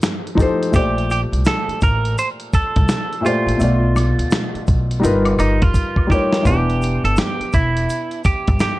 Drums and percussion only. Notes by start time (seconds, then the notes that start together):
0.02 finger snap, snare, closed hi-hat, maracas
0.27 closed hi-hat
0.38 kick, closed hi-hat, maracas
0.63 closed hi-hat
0.73 kick, closed hi-hat, maracas
0.98 closed hi-hat
1.10 closed hi-hat, maracas
1.33 closed hi-hat
1.45 finger snap, snare, closed hi-hat, maracas
1.69 closed hi-hat
1.81 kick, closed hi-hat, maracas
2.05 closed hi-hat
2.18 closed hi-hat, maracas
2.40 closed hi-hat
2.53 kick, closed hi-hat, maracas
2.76 kick, closed hi-hat
2.88 finger snap, snare, closed hi-hat, maracas
3.13 closed hi-hat
3.26 closed hi-hat, maracas
3.49 closed hi-hat
3.60 closed hi-hat, maracas
3.96 snare, closed hi-hat, high woodblock, maracas
4.19 closed hi-hat
4.31 finger snap, snare, closed hi-hat, maracas
4.55 closed hi-hat
4.67 kick, closed hi-hat, maracas
4.91 closed hi-hat
5.04 closed hi-hat, maracas
5.25 closed hi-hat, high woodblock
5.39 closed hi-hat, high woodblock, maracas
5.62 kick, closed hi-hat
5.74 kick, closed hi-hat, maracas
5.96 kick, high woodblock
6.10 kick, closed hi-hat, maracas
6.33 snare, closed hi-hat
6.45 kick, closed hi-hat, maracas
6.70 closed hi-hat
6.82 closed hi-hat, maracas
7.05 closed hi-hat
7.16 finger snap, snare, closed hi-hat, maracas
7.41 closed hi-hat
7.52 kick, closed hi-hat, maracas
7.77 closed hi-hat
7.89 closed hi-hat, maracas
8.11 closed hi-hat
8.24 kick, closed hi-hat, maracas
8.47 kick, closed hi-hat
8.60 finger snap, snare, closed hi-hat, maracas